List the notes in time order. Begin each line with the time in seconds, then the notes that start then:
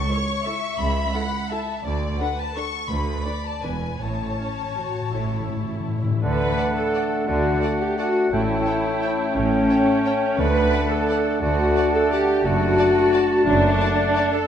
Already playing: C#6
0.09 E4 A4 C#5
0.45 E4 A4 E5
0.79 C#2 B5
1.14 E4 A4 F#5
1.49 E4 A4 E5 A5
1.85 D2 D5
2.19 D4 A4 B4 F#5
2.38 A5
2.55 D4 A4 C#6
2.90 D2 B4 B5
3.25 D4 B4 D5
3.45 A5
3.63 E1 E2 D4 B4 G#5
3.99 A1 A2 C#5 A5
4.08 A2
4.23 A2
4.31 A2
4.37 A2 C#4
4.47 A2
4.55 A2
4.63 A2
4.71 A2
4.76 A2 F#4
4.87 A2
4.94 A2
5.01 A2
5.09 A1 A2 E4
5.17 A2
5.24 A2
5.32 A2
5.40 A2
5.48 A2
5.56 A2
5.64 A2
5.72 A2
5.80 A2
5.88 A2
5.96 A2
6.03 A2
6.11 A2
6.22 D2 D3 A3 D4 B4 D5 F#5 A5
6.57 D5 F#5 A5
6.76 A4
6.93 D5 F#5 A5
7.27 D2 D3 A3 F#4 D5 F#5 A5
7.62 D5 F#5 A5
7.81 G4
7.98 A3 F#4 D5 F#5 A5
8.32 A1 A2 A3 C#4 E4 C#5 G5 A5
8.66 C#5 G5 A5
9.02 C#5 G5 A5
9.35 A1 A2 A3 C#4 C#5 G5 A5
9.70 C#5 G5 A5
10.05 C#5 G5 A5
10.38 D2 D3 A3 D4 B4 D5 F#5 A5
10.72 D5 F#5 A5
10.90 A4
11.08 D5 F#5 A5
11.42 D2 A3 F#4 D5 F#5 A5
11.77 D5 F#5 A5
11.94 A4
12.11 G4 D5 F#5 A5
12.45 F#1 F#2 A3 D4 F#4 D5 F#5 A5
12.78 D5 A5
13.13 D5 A5
13.46 F#1 F#2 A3 D4 D5 F#5 A5
13.81 D5 A5
14.15 D5 A5
14.32 A4